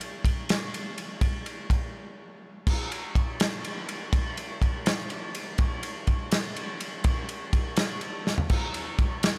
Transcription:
0.01 ride medium
0.25 kick medium
0.25 ride medium
0.49 snare loud
0.49 ride loud
0.74 ride medium
0.98 ride medium
1.21 kick loud
1.21 ride medium
1.46 ride medium
1.70 kick medium
1.70 ride medium
2.67 kick loud
2.67 crash loud
2.92 ride medium
3.15 kick medium
3.15 ride medium
3.40 snare loud
3.40 ride loud
3.65 ride medium
3.89 ride medium
4.13 kick loud
4.13 ride loud
4.37 ride medium
4.62 kick medium
4.62 ride medium
4.86 snare loud
4.86 ride loud
5.10 ride medium
5.35 ride medium
5.58 kick loud
5.58 ride medium
5.83 ride medium
6.07 kick medium
6.07 ride medium
6.31 snare loud
6.31 ride loud
6.56 ride medium
6.81 ride medium
7.04 kick loud
7.04 ride loud
7.29 ride medium
7.53 kick medium
7.53 ride medium
7.77 snare loud
7.77 ride loud
8.01 ride medium
8.27 snare medium
8.38 floor tom medium
8.49 kick loud
8.49 crash medium
8.74 ride medium
8.99 kick medium
8.99 ride medium
9.23 snare loud
9.23 ride loud

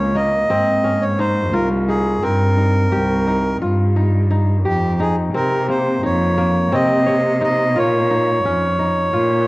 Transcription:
0.00 0.40 C#2 medium
0.00 0.14 A#3 medium
0.00 0.56 C#4 medium
0.00 0.38 D#4 soft
0.00 0.16 C#5 medium
0.15 2.07 A#3 soft
0.15 1.04 D#5 medium
0.50 1.55 G#2 medium
0.50 0.90 C4 medium
0.84 2.28 C#4 soft
1.02 1.19 C#5 medium
1.19 1.88 D#4 medium
1.19 1.54 C5 medium
1.53 2.14 C2 medium
1.53 3.04 F4 medium
1.53 1.69 A#4 medium
1.88 2.57 D#4 soft
1.88 2.23 G#4 medium
2.22 2.83 G2 medium
2.22 4.02 C4 medium
2.22 3.57 A#4 medium
2.57 3.26 D#4 soft
2.92 3.52 C2 medium
2.92 4.33 G4 medium
3.27 3.96 D#4 soft
3.61 4.66 G2 medium
3.61 5.13 F4 medium
3.96 4.30 D#4 soft
4.31 4.99 D#4 medium
4.65 5.25 F2 medium
4.65 5.00 G4 medium
4.65 6.06 G4 medium
5.00 6.02 D#4 medium
5.00 5.16 G#4 medium
5.34 5.94 C3 medium
5.34 6.72 C4 medium
5.34 5.67 A#4 medium
5.68 6.37 A#3 soft
5.68 6.02 C5 medium
6.03 6.63 F2 medium
6.03 7.40 D#4 medium
6.03 6.75 C#5 medium
6.37 8.30 A#3 medium
6.72 7.77 C3 medium
6.72 7.12 C4 medium
6.72 7.42 D#5 medium
7.06 8.21 C#5 medium
7.41 8.10 D#4 medium
7.41 7.78 D#5 medium
7.76 8.36 A#2 medium
7.76 9.13 F4 medium
7.76 9.47 C#5 medium
8.10 8.79 D#4 medium
8.44 9.05 F2 medium
8.44 9.47 C#4 medium
8.79 9.47 D#4 soft
9.13 9.47 A#2 medium
9.13 9.47 F4 medium

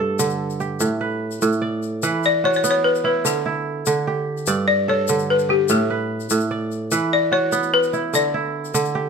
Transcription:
0.00 0.86 G2 medium
0.00 0.14 E4 medium
0.00 0.59 G4 medium
0.00 1.30 A4 medium
0.00 0.69 D5 medium
0.19 0.86 D3 medium
0.19 shaker medium
0.30 shaker soft
0.50 shaker soft
0.60 2.01 G4 medium
0.60 shaker soft
0.80 1.41 A2 medium
0.80 shaker medium
1.01 2.03 B4 medium
1.31 shaker soft
1.42 2.08 A2 medium
1.42 shaker medium
1.52 shaker soft
1.62 2.72 D5 medium
1.82 shaker soft
2.03 3.30 E3 medium
2.03 3.26 B4 medium
2.03 shaker medium
2.23 2.45 D5 medium
2.23 shaker soft
2.44 3.90 F#4 medium
2.44 2.55 C#5 loud
2.53 2.69 C#5 medium
2.53 shaker soft
2.64 4.50 B3 medium
2.64 shaker medium
2.71 2.85 C#5 loud
2.84 3.04 B4 medium
2.95 shaker soft
3.04 3.45 E4 medium
3.04 3.26 B4 medium
3.25 3.86 D3 medium
3.25 4.24 A4 medium
3.25 shaker medium
3.46 5.02 E4 medium
3.86 4.52 D3 medium
3.86 shaker medium
4.07 5.48 G4 medium
4.37 shaker soft
4.47 5.74 G2 medium
4.47 5.59 D5 medium
4.47 shaker medium
4.68 4.89 D5 loud
4.88 6.20 A4 medium
4.88 5.31 C#5 medium
5.08 5.74 D3 medium
5.08 shaker medium
5.19 shaker soft
5.30 5.39 B4 medium
5.39 shaker soft
5.49 6.90 G4 medium
5.49 5.71 G4 medium
5.69 6.29 A2 medium
5.69 6.13 A4 medium
5.69 shaker medium
5.90 6.91 B4 medium
6.20 shaker soft
6.30 6.96 A2 medium
6.30 shaker medium
6.40 shaker soft
6.51 7.62 D5 medium
6.71 shaker soft
6.91 8.18 E3 medium
6.91 8.14 B4 medium
6.91 shaker medium
7.13 7.33 D5 medium
7.32 8.78 F#4 medium
7.32 7.74 C#5 medium
7.52 9.09 B3 medium
7.52 shaker medium
7.63 shaker soft
7.74 8.15 B4 medium
7.83 shaker soft
7.93 8.34 E4 medium
7.93 shaker soft
8.13 8.73 D3 medium
8.13 9.09 D5 medium
8.13 shaker medium
8.34 9.09 E4 medium
8.65 shaker soft
8.74 9.09 D3 medium
8.74 shaker medium
8.85 shaker soft
8.95 9.09 G4 medium

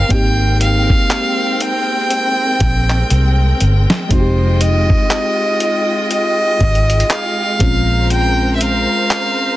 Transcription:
0.00 4.06 A#4 medium
0.00 0.13 F5 loud
0.00 7.56 G5 medium
0.09 0.93 G#1 loud
0.09 9.57 G#3 medium
0.09 4.06 A#3 medium
0.09 4.06 C4 medium
0.09 4.07 D#4 medium
0.09 0.61 G5 loud
0.09 kick loud
0.09 closed hi-hat medium
0.14 4.08 G4 medium
0.61 1.63 F5 loud
0.61 closed hi-hat medium
0.90 kick loud
1.10 clap loud
1.10 closed hi-hat medium
1.61 3.61 G5 loud
1.61 closed hi-hat medium
2.10 closed hi-hat medium
2.60 3.02 A#1 medium
2.60 kick medium
2.60 closed hi-hat medium
2.90 clap medium
3.10 3.52 C2 loud
3.10 closed hi-hat medium
3.60 3.85 G1 medium
3.60 closed hi-hat medium
3.90 snare medium
4.09 4.93 F1 loud
4.09 7.56 G#3 medium
4.09 7.56 C4 medium
4.09 7.57 D#4 medium
4.09 7.57 F4 medium
4.09 4.63 C5 medium
4.09 7.57 D#5 medium
4.09 kick loud
4.09 closed hi-hat medium
4.14 4.20 F#4 medium
4.20 7.61 G4 medium
4.61 6.11 D#5 loud
4.61 closed hi-hat medium
4.90 kick loud
5.10 clap loud
5.10 closed hi-hat medium
5.60 closed hi-hat medium
6.11 7.13 D#5 loud
6.11 closed hi-hat medium
6.61 7.02 G#1 medium
6.61 kick medium
6.61 closed hi-hat soft
6.75 closed hi-hat soft
6.90 closed hi-hat medium
7.00 closed hi-hat medium
7.10 8.11 F5 loud
7.10 clap loud
7.10 closed hi-hat medium
7.59 8.85 A#1 medium
7.59 9.57 G#3 medium
7.59 9.57 C4 medium
7.59 9.57 C#4 medium
7.59 9.57 A#4 medium
7.59 9.57 C5 medium
7.59 9.57 A#5 medium
7.59 kick loud
7.59 closed hi-hat medium
7.63 9.57 F4 medium
8.10 8.52 G5 loud
8.10 closed hi-hat medium
8.56 8.63 E5 medium
8.61 9.57 F5 loud
8.61 closed hi-hat medium
9.10 clap loud
9.10 closed hi-hat medium

